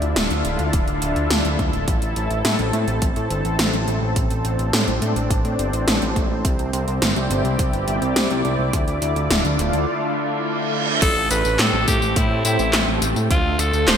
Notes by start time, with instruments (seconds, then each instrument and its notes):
Already playing: analog synth pad D3 D4 E4 F4 A4
0.02 analog synth bass D2, closed hi-hat
0.16 analog synth bass D1, snare, closed hi-hat
0.30 analog synth bass D2, closed hi-hat
0.45 analog synth bass D1, closed hi-hat
0.59 analog synth bass D2, closed hi-hat
0.73 analog synth bass D1, kick, closed hi-hat
0.88 analog synth bass D1, closed hi-hat
1.02 analog synth bass D1, closed hi-hat
1.16 analog synth bass D2, closed hi-hat
1.31 analog synth bass D2, snare, closed hi-hat
1.45 analog synth bass D2, closed hi-hat
1.59 analog synth bass D2, kick, closed hi-hat
1.73 analog synth bass D1, closed hi-hat
1.88 analog synth bass A1, analog synth pad C4, kick, closed hi-hat
2.02 analog synth bass A1, closed hi-hat
2.16 analog synth bass A1, closed hi-hat
2.31 analog synth bass A1, closed hi-hat
2.45 analog synth bass A2, snare, closed hi-hat
2.59 analog synth bass A1, closed hi-hat
2.73 analog synth bass A2, closed hi-hat
2.88 analog synth bass A1, closed hi-hat
3.02 analog synth bass A1, kick, closed hi-hat
3.16 analog synth bass A2, closed hi-hat
3.30 analog synth bass G1, closed hi-hat
3.45 analog synth bass A1, closed hi-hat
3.59 analog synth bass A1, snare, closed hi-hat
3.73 analog synth bass A1, closed hi-hat
3.88 analog synth bass A1, closed hi-hat
4.02 analog synth bass A1
4.16 analog synth bass A1, analog synth pad D4, kick, closed hi-hat
4.30 analog synth bass A1, closed hi-hat
4.45 analog synth bass A1, closed hi-hat
4.59 analog synth bass A1, closed hi-hat
4.73 analog synth bass A2, snare, closed hi-hat
4.88 analog synth bass A1, closed hi-hat
5.02 analog synth bass A2, closed hi-hat
5.16 analog synth bass A1, closed hi-hat
5.30 analog synth bass A1, kick, closed hi-hat
5.45 analog synth bass A2, closed hi-hat
5.59 analog synth bass G1, closed hi-hat
5.73 analog synth bass A1, closed hi-hat
5.88 analog synth bass A1, snare, closed hi-hat
6.02 analog synth bass A1, closed hi-hat
6.16 analog synth bass A1, kick, closed hi-hat
6.30 analog synth bass A1
6.45 analog synth bass C2, analog synth pad C3 E4 G4 D5, kick, closed hi-hat
6.59 analog synth bass C2, closed hi-hat
6.73 analog synth bass C2, closed hi-hat
6.88 analog synth bass C2, closed hi-hat
7.02 analog synth bass G1, snare, closed hi-hat
7.16 analog synth bass C2, closed hi-hat
7.31 analog synth bass G1, closed hi-hat
7.45 analog synth bass C2, closed hi-hat
7.59 analog synth bass C2, kick, closed hi-hat
7.73 analog synth bass G1, closed hi-hat
7.88 analog synth bass G1, closed hi-hat
8.02 analog synth bass C2, closed hi-hat
8.16 analog synth bass C2, snare, closed hi-hat
8.30 analog synth bass C2, closed hi-hat
8.45 analog synth bass C2, closed hi-hat
8.59 analog synth bass C2
8.73 analog synth bass D2, analog synth pad D3 A3 F4, kick, closed hi-hat
8.88 analog synth bass D2, closed hi-hat
9.02 analog synth bass D2, closed hi-hat
9.16 analog synth bass D2, closed hi-hat
9.30 analog synth bass D1, snare, closed hi-hat
9.45 analog synth bass D2, closed hi-hat
9.59 analog synth bass D1, closed hi-hat
9.73 analog synth bass D2, closed hi-hat
9.88 reverse cymbal
11.02 analog synth bass A1, analog synth pad A3 C4 G4, alto saxophone A4, kick, closed hi-hat, crash, tambourine
11.16 analog synth bass A1
11.31 analog synth bass A1, alto saxophone B4, closed hi-hat, tambourine
11.45 analog synth bass A1, tambourine
11.59 analog synth bass A2, alto saxophone A4, snare, clap, closed hi-hat, tambourine
11.73 analog synth bass A1
11.88 analog synth bass A2, alto saxophone G4, kick, closed hi-hat, tambourine
12.02 analog synth bass A1, tambourine
12.16 analog synth bass A2, alto saxophone E4, kick, closed hi-hat, tambourine
12.31 analog synth bass A2
12.45 analog synth bass A2, alto saxophone E4, closed hi-hat, tambourine
12.59 analog synth bass A1, tambourine
12.73 analog synth bass A1, snare, clap, closed hi-hat, tambourine
12.88 analog synth bass A1
13.02 analog synth bass A1, closed hi-hat, tambourine
13.16 analog synth bass A2, tambourine
13.30 analog synth bass D2, analog synth pad D4 F4, alto saxophone F4, kick, closed hi-hat, tambourine
13.45 analog synth bass D2
13.59 analog synth bass D2, alto saxophone A4, closed hi-hat, tambourine
13.73 analog synth bass D2, tambourine
13.88 analog synth bass D1, alto saxophone C5, snare, clap, closed hi-hat, tambourine